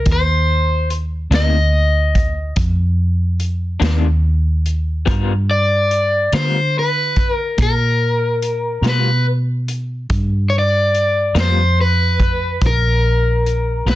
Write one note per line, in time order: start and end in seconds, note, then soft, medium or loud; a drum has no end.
0.00 0.11 A#4 medium
0.06 1.28 D#2 medium
0.06 kick medium
0.06 closed hi-hat medium
0.12 0.89 C5 medium
0.90 closed hi-hat soft
1.31 2.53 D2 medium
1.31 1.57 C3 soft
1.31 1.57 D#3 soft
1.31 1.57 A#3 soft
1.31 1.57 D4 medium
1.31 snare loud
1.31 closed hi-hat medium
1.35 2.55 D#5 medium
2.15 kick medium
2.15 closed hi-hat medium
2.56 3.79 F2 medium
2.56 kick medium
2.56 closed hi-hat medium
3.40 closed hi-hat soft
3.80 5.04 D#2 medium
3.80 4.07 C3 medium
3.80 4.07 D#3 medium
3.80 4.07 A#3 medium
3.80 4.06 D4 medium
3.80 snare loud
3.80 closed hi-hat medium
4.66 closed hi-hat soft
5.06 6.29 G2 medium
5.06 5.32 G3 medium
5.06 5.32 B3 medium
5.06 5.33 F4 medium
5.06 5.33 A#4 medium
5.06 kick loud
5.06 closed hi-hat medium
5.51 6.35 D5 loud
5.91 closed hi-hat medium
6.33 7.55 D3 medium
6.33 6.59 G3 soft
6.33 6.59 B3 soft
6.33 6.59 F4 soft
6.33 6.59 A#4 medium
6.33 6.78 C5 medium
6.33 snare medium
6.33 closed hi-hat medium
6.79 7.32 B4 medium
7.16 kick medium
7.16 closed hi-hat medium
7.32 7.57 A#4 medium
7.58 8.80 A#2 medium
7.58 kick loud
7.58 closed hi-hat medium
7.62 8.89 A#4 medium
8.42 closed hi-hat medium
8.82 10.05 B2 medium
8.82 9.10 G3 soft
8.82 9.10 B3 medium
8.82 9.10 F4 medium
8.82 9.09 A#4 medium
8.82 snare loud
8.82 closed hi-hat medium
8.89 9.26 B4 medium
9.68 closed hi-hat medium
10.10 11.32 G2 medium
10.10 kick loud
10.10 closed hi-hat medium
10.50 10.55 C#5 medium
10.59 11.40 D5 loud
10.95 closed hi-hat soft
11.35 12.57 F2 medium
11.35 11.62 G3 soft
11.35 11.61 B3 medium
11.35 11.61 F4 medium
11.35 11.61 A#4 soft
11.35 snare loud
11.35 closed hi-hat medium
11.40 11.81 C5 medium
11.81 12.66 B4 medium
12.20 kick medium
12.20 closed hi-hat soft
12.61 13.83 A#1 medium
12.61 kick loud
12.61 closed hi-hat medium
12.66 13.86 A#4 medium
13.46 closed hi-hat soft
13.86 13.95 B1 medium
13.86 13.95 G3 medium
13.86 13.95 B3 medium
13.86 13.95 F4 medium
13.86 13.95 A#4 medium
13.86 13.95 B4 medium
13.86 snare loud
13.86 closed hi-hat medium